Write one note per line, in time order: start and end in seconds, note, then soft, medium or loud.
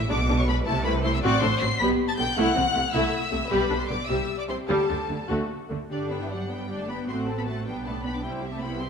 0.10 0.60 B1 loud
0.10 0.60 B2 medium
0.10 0.18 G#3 medium
0.10 0.18 D4 medium
0.10 0.18 D5 loud
0.10 0.38 D6 loud
0.29 0.37 G#3 medium
0.29 0.37 D4 medium
0.39 0.48 C#5 medium
0.39 0.49 C#6 loud
0.47 0.56 G#3 medium
0.47 0.56 D4 medium
0.47 0.66 B4 medium
0.47 0.56 B5 loud
0.66 1.17 C2 loud
0.66 1.17 C3 medium
0.66 0.74 A3 medium
0.66 0.74 E4 medium
0.66 0.85 A4 medium
0.66 0.85 A5 loud
0.85 0.93 A3 medium
0.85 0.93 E4 medium
0.85 1.04 B4 loud
0.85 0.93 B5 loud
1.03 1.12 A3 medium
1.03 1.12 E4 medium
1.03 1.14 C5 medium
1.03 1.13 C6 loud
1.14 1.24 E5 medium
1.14 1.18 E6 medium
1.23 1.31 A1 loud
1.23 1.31 A2 loud
1.23 1.41 C4 medium
1.23 1.41 F#4 loud
1.23 1.42 D5 loud
1.23 1.42 D6 loud
1.42 1.51 A1 medium
1.42 1.50 A2 medium
1.42 1.50 A3 medium
1.42 1.50 D4 medium
1.42 1.62 C5 loud
1.42 1.61 C6 loud
1.61 1.70 A1 medium
1.61 1.69 A2 medium
1.61 1.69 F#3 medium
1.61 1.69 C4 medium
1.61 1.81 C6 medium
1.61 1.80 C7 loud
1.79 1.88 B1 loud
1.79 1.88 B2 medium
1.79 1.98 B3 loud
1.79 1.98 G4 medium
1.79 1.89 B5 loud
1.79 1.87 B6 loud
2.08 2.12 A5 medium
2.08 2.12 A6 loud
2.17 2.26 B1 medium
2.17 2.26 B2 medium
2.17 2.26 D3 medium
2.17 2.26 B3 medium
2.17 2.37 G5 loud
2.17 2.36 G6 loud
2.37 2.44 C2 medium
2.37 2.45 C3 medium
2.37 2.55 A3 medium
2.37 2.55 E4 loud
2.37 2.93 F#5 loud
2.37 2.94 F#6 loud
2.55 2.64 C2 medium
2.55 2.64 C3 medium
2.55 2.63 E3 medium
2.55 2.63 C4 medium
2.75 2.83 C2 medium
2.75 2.83 C3 medium
2.75 2.83 A3 medium
2.93 3.01 C2 medium
2.93 3.02 C3 medium
2.93 3.11 A3 loud
2.93 3.11 E4 loud
2.93 3.51 E5 medium
2.93 3.51 E6 loud
3.32 3.40 C2 medium
3.32 3.39 C3 medium
3.32 3.40 C3 medium
3.32 3.39 A3 medium
3.50 3.59 B1 medium
3.50 3.58 B2 medium
3.50 3.69 G3 loud
3.50 3.69 G4 medium
3.50 3.79 B4 medium
3.50 3.80 B5 medium
3.70 3.78 B1 medium
3.70 3.78 B2 medium
3.70 3.79 D3 medium
3.70 3.79 D4 medium
3.79 3.83 C5 medium
3.79 3.90 C6 medium
3.89 3.98 B1 medium
3.89 3.97 B2 medium
3.89 3.98 D3 medium
3.89 3.98 B3 soft
3.89 4.08 D5 medium
3.89 4.09 D6 loud
4.07 4.17 C2 medium
4.07 4.17 C3 medium
4.07 4.27 G3 medium
4.07 4.27 G4 medium
4.07 4.38 E5 medium
4.07 4.38 E6 medium
4.38 4.43 D5 medium
4.38 4.43 D6 medium
4.48 4.56 C2 soft
4.48 4.57 C3 medium
4.48 4.56 C4 medium
4.48 4.57 C5 medium
4.48 4.57 C6 medium
4.69 4.77 D2 medium
4.69 4.77 D3 medium
4.69 4.88 G3 medium
4.69 4.88 G4 medium
4.69 5.29 A4 medium
4.69 5.29 A5 medium
4.89 4.97 D2 medium
4.89 4.98 D3 medium
4.89 4.98 D4 medium
5.09 5.17 D2 soft
5.09 5.17 D3 medium
5.09 5.17 A3 soft
5.29 5.38 D2 medium
5.29 5.37 D3 medium
5.29 5.49 A3 medium
5.29 5.49 F#4 medium
5.70 5.79 D2 soft
5.70 5.78 D3 medium
5.70 5.79 D3 soft
5.70 5.78 A3 medium
5.90 7.04 G1 medium
5.90 6.19 D3 medium
5.90 6.09 D4 medium
5.90 6.09 G4 soft
5.90 6.10 D5 soft
5.90 6.00 D5 medium
6.10 6.31 B3 soft
6.10 6.30 D4 soft
6.10 6.31 B4 soft
6.10 6.30 G5 soft
6.20 6.31 E3 soft
6.20 6.26 E5 medium
6.31 6.38 F#3 medium
6.31 6.49 D4 soft
6.31 6.50 G4 soft
6.31 6.51 D5 soft
6.31 6.50 F#5 medium
6.50 6.79 G3 soft
6.50 6.70 B3 soft
6.50 6.70 D4 soft
6.50 6.70 B4 soft
6.50 6.80 G5 medium
6.50 6.70 G5 soft
6.70 6.88 D4 soft
6.70 6.89 G4 soft
6.70 6.88 D5 soft
6.79 6.89 A3 soft
6.79 6.90 A5 medium
6.89 7.09 B3 medium
6.89 7.09 B3 soft
6.89 7.09 D4 soft
6.89 7.09 B4 soft
6.89 7.09 G5 soft
6.89 6.97 B5 medium
7.09 7.65 A1 medium
7.09 7.27 A3 soft
7.09 7.38 C4 medium
7.09 7.26 F#4 soft
7.09 7.27 C5 soft
7.09 7.27 F#5 soft
7.09 7.17 C6 medium
7.28 7.47 C4 soft
7.28 7.47 A4 soft
7.28 7.47 A5 soft
7.38 7.41 B3 medium
7.38 7.42 B5 medium
7.47 7.66 A3 soft
7.47 7.66 A3 medium
7.47 7.66 F#4 soft
7.47 7.67 C5 soft
7.47 7.67 F#5 soft
7.47 7.66 A5 medium
7.66 8.24 B1 medium
7.66 7.74 G3 medium
7.66 7.84 B3 soft
7.66 7.85 D4 soft
7.66 7.85 B4 soft
7.66 7.85 G5 medium
7.66 7.85 G5 soft
7.84 7.94 A3 medium
7.84 8.05 B3 soft
7.84 8.05 D4 soft
7.84 8.05 G4 soft
7.84 8.04 A5 medium
7.84 8.05 B5 soft
8.05 8.09 B3 medium
8.05 8.25 B3 soft
8.05 8.25 D4 soft
8.05 8.25 B4 soft
8.05 8.24 G5 soft
8.05 8.14 B5 medium
8.14 8.24 D4 medium
8.14 8.24 D6 medium
8.22 8.89 C2 medium
8.22 8.52 G3 medium
8.22 8.42 G3 soft
8.22 8.42 E4 soft
8.22 8.42 C5 soft
8.22 8.30 G5 medium
8.22 8.42 G5 soft
8.43 8.62 C4 soft
8.43 8.62 G4 soft
8.43 8.63 G4 soft
8.43 8.63 E5 soft
8.53 8.62 A3 medium
8.53 8.62 A5 medium
8.61 8.82 G3 soft
8.61 8.81 B3 medium
8.61 8.82 E4 soft
8.61 8.82 C5 soft
8.61 8.82 G5 soft
8.61 8.81 B5 medium
8.80 8.89 C4 medium
8.80 8.89 C4 soft
8.80 8.89 G4 soft
8.80 8.89 E5 soft
8.80 8.89 C6 medium